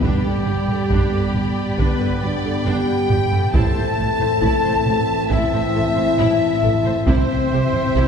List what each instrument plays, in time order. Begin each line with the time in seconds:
0.02 double bass section G1, cello section G2, french horn section G3, trombone section G3 B3, viola section D4 D5, trumpet section G4, violin section G4 G5 B5, flute G4, taiko
0.25 cello section G2, viola section A4
0.47 double bass section G1, cello section G2, viola section G4
0.68 cello section G2, viola section A4, taiko low-mid
0.90 double bass section G1, cello section G2, viola section D4, taiko
1.12 cello section G2, viola section A4
1.34 double bass section G1, cello section G2, viola section G4, taiko low-mid
1.78 double bass section G1, cello section G2, french horn section B3, viola section D4, flute B4, trumpet section B4, violin section B4, taiko
1.99 cello section G2, viola section A4
2.23 double bass section G1, cello section G2, french horn section D4, viola section G4, trumpet section D5, violin section D5, flute D5
2.44 cello section G2, viola section A4
2.66 double bass section G1, cello section G2, viola section D4, french horn section G4, trumpet section G5, violin section G5, flute G5
3.10 double bass section G1, cello section G2, viola section G4, taiko low-mid
3.32 cello section G2, viola section A4, taiko low-mid
3.54 double bass section A1, cello section A2, trombone section E3 C4, viola section E4 C5, french horn section A4, violin section E5 A5, trumpet section A5, flute A5, taiko
3.76 cello section A2, viola section C5
3.98 double bass section A1, cello section A2, viola section A4
4.20 cello section A2, viola section C5, taiko low-mid
4.41 double bass section A1, cello section A2, viola section E4, taiko
4.64 cello section A2, viola section C5
4.85 double bass section A1, cello section A2, viola section A4, taiko low-mid
5.29 double bass section A1, cello section A2, viola section E4, french horn section E4, trumpet section E5, violin section E5, flute E5, taiko
5.53 cello section A2, viola section C5
5.74 double bass section A1, cello section A2, viola section A4
5.96 cello section A2, viola section C5
6.19 double bass section A1, cello section A2, viola section E4
6.62 double bass section A1, cello section A2, viola section A4, taiko low-mid
6.84 cello section A2, viola section C5, taiko low-mid
7.06 double bass section C2, cello section C3, trombone section E3 C4, french horn section C4, viola section E4 E5, violin section C5 E5 G5, flute C5, trumpet section C5, taiko
7.29 cello section C3, viola section C5
7.52 double bass section C2, cello section C3, viola section G4
7.73 cello section C3, viola section C5, taiko low-mid
7.95 double bass section C2, cello section C3, viola section E4, taiko